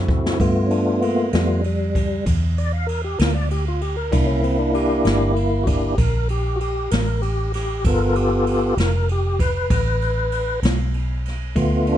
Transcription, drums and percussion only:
0.08 kick loud
0.26 snare medium
0.40 kick medium
0.40 ride medium
0.70 ride medium
1.02 ride medium
1.33 snare loud
1.33 ride medium
1.64 ride medium
1.95 kick medium
1.95 ride medium
2.26 kick loud
2.26 ride medium
2.58 ride medium
2.88 ride medium
3.19 snare loud
3.19 ride medium
3.51 ride medium
3.81 ride medium
4.12 kick loud
4.12 ride medium
4.44 ride medium
4.74 ride medium
5.05 snare loud
5.05 ride medium
5.36 ride medium
5.67 kick medium
5.67 ride medium
5.98 kick medium
5.98 ride medium
6.29 ride medium
6.60 ride medium
6.91 snare loud
6.91 ride medium
7.22 ride medium
7.54 snare soft
7.54 ride medium
7.84 kick medium
7.84 ride medium
8.15 ride medium
8.47 ride medium
8.78 snare loud
8.78 ride medium
9.09 ride medium
9.39 kick medium
9.39 ride medium
9.70 kick loud
9.70 ride medium
10.01 ride medium
10.32 ride medium
10.63 snare loud
10.63 ride medium
10.94 ride medium
11.25 snare soft
11.25 ride medium
11.56 kick loud
11.56 ride medium
11.87 ride medium

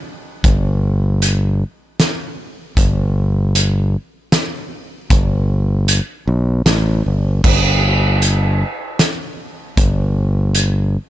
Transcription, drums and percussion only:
0.44 kick loud
0.44 closed hi-hat medium
1.22 closed hi-hat medium
2.00 snare loud
2.00 closed hi-hat medium
2.77 kick loud
2.77 closed hi-hat medium
3.55 closed hi-hat medium
4.32 snare loud
4.32 closed hi-hat medium
5.10 kick loud
5.10 closed hi-hat medium
5.88 closed hi-hat medium
6.66 snare loud
6.66 closed hi-hat medium
7.44 kick loud
7.44 crash loud
8.22 closed hi-hat medium
8.99 snare loud
8.99 closed hi-hat medium
9.77 kick loud
9.77 closed hi-hat medium
10.55 closed hi-hat medium

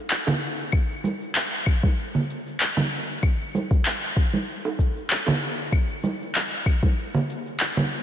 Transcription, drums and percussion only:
0.10 clap medium
0.10 cabasa soft
0.27 high bongo soft
0.27 low conga medium
0.27 cabasa soft
0.42 cabasa medium
0.59 cabasa soft
0.72 kick loud
0.72 cabasa soft
0.72 claves medium
0.90 cabasa soft
1.04 high conga medium
1.04 cabasa medium
1.22 cabasa soft
1.35 clap loud
1.35 cabasa soft
1.53 cabasa soft
1.66 kick loud
1.66 cabasa medium
1.66 claves medium
1.83 kick loud
1.83 high conga medium
1.83 cabasa soft
1.99 cabasa soft
2.15 low conga medium
2.15 cabasa soft
2.30 cabasa medium
2.47 cabasa soft
2.60 clap loud
2.60 cabasa soft
2.77 high conga medium
2.77 low conga medium
2.77 cabasa soft
2.92 cabasa medium
3.09 cabasa soft
3.23 kick loud
3.23 cabasa soft
3.23 claves medium
3.41 cabasa soft
3.55 high conga medium
3.55 cabasa medium
3.71 kick loud
3.71 cabasa soft
3.85 clap loud
3.85 cabasa soft
4.04 cabasa soft
4.17 kick medium
4.17 cabasa medium
4.33 high conga medium
4.33 cabasa soft
4.49 cabasa soft
4.65 high bongo soft
4.65 cabasa soft
4.79 kick medium
4.79 cabasa medium
4.97 cabasa soft
5.10 clap medium
5.10 cabasa soft
5.27 high bongo medium
5.27 low conga medium
5.27 cabasa soft
5.42 cabasa medium
5.59 cabasa soft
5.72 kick loud
5.72 cabasa soft
5.72 claves medium
5.91 cabasa soft
6.04 high conga medium
6.04 cabasa medium
6.22 cabasa soft
6.35 clap medium
6.35 cabasa soft
6.53 cabasa soft
6.66 kick loud
6.66 cabasa medium
6.66 claves medium
6.83 kick loud
6.83 high conga medium
6.83 cabasa soft
6.98 cabasa soft
7.14 low conga medium
7.14 cabasa soft
7.30 cabasa medium
7.46 cabasa soft
7.60 clap medium
7.60 cabasa soft
7.77 high conga medium
7.77 low conga medium
7.77 cabasa soft
7.92 cabasa medium

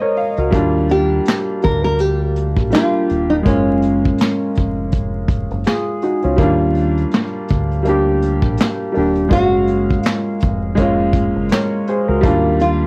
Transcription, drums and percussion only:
0.17 open hi-hat soft
0.37 closed hi-hat soft
0.53 kick loud
0.53 closed hi-hat medium
0.89 closed hi-hat medium
1.26 snare loud
1.26 clap medium
1.26 closed hi-hat medium
1.62 kick medium
1.62 closed hi-hat medium
1.85 closed hi-hat soft
1.99 closed hi-hat medium
2.36 closed hi-hat medium
2.57 kick medium
2.57 closed hi-hat soft
2.71 snare loud
2.71 clap medium
2.71 closed hi-hat medium
3.09 closed hi-hat medium
3.30 closed hi-hat soft
3.45 kick loud
3.45 closed hi-hat medium
3.82 closed hi-hat medium
4.04 kick medium
4.04 closed hi-hat soft
4.18 snare loud
4.18 clap medium
4.18 closed hi-hat medium
4.55 kick medium
4.55 closed hi-hat medium
4.91 kick medium
4.91 closed hi-hat medium
5.28 kick loud
5.28 closed hi-hat medium
5.50 closed hi-hat soft
5.64 snare loud
5.64 clap medium
5.64 closed hi-hat medium
6.02 closed hi-hat soft
6.22 closed hi-hat soft
6.38 kick loud
6.38 closed hi-hat medium
6.75 closed hi-hat medium
6.97 closed hi-hat soft
7.11 snare loud
7.11 clap medium
7.11 closed hi-hat medium
7.48 kick loud
7.48 closed hi-hat medium
7.71 closed hi-hat soft
7.85 closed hi-hat medium
8.22 closed hi-hat medium
8.42 kick medium
8.57 snare loud
8.57 clap medium
8.57 closed hi-hat medium
8.95 open hi-hat soft
9.15 closed hi-hat soft
9.31 kick loud
9.31 closed hi-hat medium
9.67 closed hi-hat medium
9.89 kick medium
9.89 closed hi-hat soft
10.03 snare loud
10.03 clap loud
10.03 closed hi-hat loud
10.40 kick medium
10.40 closed hi-hat medium
10.77 kick medium
10.77 closed hi-hat medium
11.13 kick loud
11.13 closed hi-hat medium
11.49 snare loud
11.49 clap medium
11.49 closed hi-hat medium
11.87 closed hi-hat medium
12.23 kick loud
12.23 closed hi-hat medium
12.60 closed hi-hat medium

